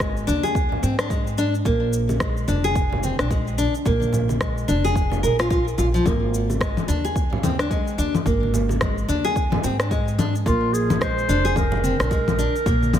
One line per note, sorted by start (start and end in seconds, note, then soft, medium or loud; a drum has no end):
0.00 0.21 G#1 medium
0.00 0.27 G#3 medium
0.00 kick loud
0.00 cross-stick medium
0.00 cabasa soft
0.17 cabasa soft
0.27 0.76 D#2 medium
0.27 0.43 D4 medium
0.27 high conga medium
0.27 cabasa medium
0.43 0.81 G#4 medium
0.43 high bongo soft
0.43 cabasa soft
0.55 kick loud
0.55 cabasa soft
0.72 low conga medium
0.83 1.59 G#2 medium
0.83 0.97 C4 medium
0.83 cabasa medium
0.99 1.09 D4 medium
0.99 cross-stick medium
0.99 cabasa soft
1.10 1.37 G#3 medium
1.10 kick loud
1.10 cabasa soft
1.27 cabasa soft
1.38 1.53 D4 medium
1.38 cabasa medium
1.55 cabasa soft
1.65 2.41 A#1 medium
1.65 2.20 A#3 medium
1.65 kick loud
1.65 cabasa soft
1.93 cabasa medium
2.09 high bongo medium
2.09 high conga soft
2.09 cabasa soft
2.20 2.47 G#3 medium
2.20 kick loud
2.20 cross-stick medium
2.20 cabasa soft
2.37 cabasa soft
2.48 3.10 F1 medium
2.48 2.63 D4 loud
2.48 high conga medium
2.48 cabasa medium
2.64 3.02 G#4 medium
2.64 cabasa soft
2.76 kick loud
2.76 cabasa soft
2.93 low conga medium
3.03 3.18 C4 medium
3.03 high conga medium
3.03 cabasa medium
3.19 3.65 A#1 medium
3.19 3.29 D4 medium
3.19 cross-stick medium
3.19 cabasa soft
3.31 3.57 G#3 medium
3.31 kick loud
3.31 cabasa soft
3.47 cabasa soft
3.58 3.73 D4 medium
3.58 high conga soft
3.58 cabasa medium
3.75 cabasa soft
3.86 4.62 A#1 medium
3.86 4.40 A#3 medium
3.86 kick loud
3.86 cabasa soft
4.02 high conga medium
4.02 cabasa soft
4.13 low conga medium
4.13 cabasa medium
4.29 high bongo soft
4.29 high conga medium
4.29 cabasa soft
4.41 4.67 G#3 medium
4.41 kick loud
4.41 cross-stick medium
4.41 cabasa soft
4.58 cabasa soft
4.68 5.23 F1 medium
4.68 4.84 D4 medium
4.68 high conga medium
4.68 cabasa medium
4.84 5.22 G#4 medium
4.84 high bongo soft
4.84 cabasa soft
4.96 kick loud
4.96 cabasa soft
5.12 low conga medium
5.12 cabasa soft
5.23 5.72 A#1 medium
5.23 5.38 A#4 medium
5.23 cabasa medium
5.39 5.49 F4 medium
5.39 cross-stick medium
5.39 cabasa soft
5.50 5.65 F4 medium
5.50 kick loud
5.50 cabasa soft
5.68 cabasa soft
5.78 5.97 A#1 medium
5.78 5.87 F4 medium
5.78 low conga medium
5.78 cabasa medium
5.94 6.05 F3 medium
5.94 cabasa soft
6.06 6.82 G#1 medium
6.06 6.60 A#3 medium
6.06 kick loud
6.06 low conga medium
6.06 cabasa soft
6.34 cabasa medium
6.50 high bongo soft
6.50 high conga soft
6.50 cabasa soft
6.61 6.87 G#3 medium
6.61 kick loud
6.61 cross-stick medium
6.61 cabasa soft
6.77 low conga medium
6.77 cabasa soft
6.88 7.77 D#2 medium
6.88 7.04 D4 medium
6.88 high conga medium
6.88 cabasa medium
7.05 7.42 G#4 medium
7.05 cabasa soft
7.16 kick loud
7.16 cabasa soft
7.33 low conga medium
7.43 7.58 C4 medium
7.43 high conga medium
7.43 low conga medium
7.43 cabasa medium
7.59 7.70 D4 medium
7.59 cross-stick medium
7.59 cabasa soft
7.71 7.97 G#3 medium
7.71 kick medium
7.71 cabasa soft
7.87 cabasa soft
7.98 8.17 D#2 medium
7.98 8.14 D4 medium
7.98 high conga soft
7.98 cabasa medium
8.15 low conga medium
8.15 cabasa soft
8.26 9.02 G#1 medium
8.26 8.80 A#3 medium
8.26 kick loud
8.26 cabasa soft
8.43 high conga medium
8.54 low conga medium
8.54 cabasa medium
8.69 high bongo medium
8.69 high conga soft
8.69 cabasa soft
8.81 9.07 G#3 medium
8.81 kick loud
8.81 cross-stick medium
8.81 low conga medium
8.81 cabasa soft
8.98 cabasa soft
9.08 9.57 D#2 medium
9.08 9.24 D4 medium
9.08 high conga medium
9.08 cabasa medium
9.25 9.62 G#4 loud
9.25 high bongo soft
9.25 cabasa soft
9.36 kick medium
9.36 cabasa soft
9.52 low conga medium
9.64 10.40 G#2 medium
9.64 9.78 C4 medium
9.64 cabasa medium
9.79 9.90 D4 medium
9.79 cross-stick medium
9.79 cabasa soft
9.91 10.18 G#3 medium
9.91 kick medium
9.91 cabasa soft
10.08 cabasa soft
10.19 10.34 D4 medium
10.19 low conga medium
10.19 cabasa medium
10.35 cabasa soft
10.46 11.22 A#1 loud
10.46 11.00 A#3 medium
10.46 10.75 F4 loud
10.46 kick medium
10.46 cabasa soft
10.73 11.03 G#4 medium
10.73 cabasa medium
10.90 high bongo medium
10.90 high conga medium
10.90 low conga medium
10.90 cabasa soft
11.01 11.28 G#3 medium
11.01 11.56 C5 loud
11.01 kick medium
11.01 cross-stick medium
11.01 cabasa soft
11.18 cabasa soft
11.28 11.90 F1 medium
11.28 11.44 D4 medium
11.28 high conga medium
11.28 cabasa medium
11.45 11.83 G#4 loud
11.45 cabasa soft
11.56 12.99 A#4 loud
11.56 kick loud
11.56 low conga medium
11.56 cabasa soft
11.72 low conga medium
11.84 11.98 C4 medium
11.84 high conga medium
11.84 cabasa medium
12.00 12.45 A#1 medium
12.00 12.10 D4 medium
12.00 cross-stick medium
12.00 cabasa soft
12.11 12.37 G#3 medium
12.11 kick medium
12.11 cabasa soft
12.28 low conga medium
12.28 cabasa soft
12.39 12.54 D4 medium
12.39 high conga soft
12.39 cabasa medium
12.56 cabasa soft
12.66 12.99 A#1 loud
12.66 12.99 A#3 medium
12.66 kick loud
12.66 cabasa soft
12.83 high conga medium
12.83 cabasa soft
12.93 low conga medium
12.93 cabasa medium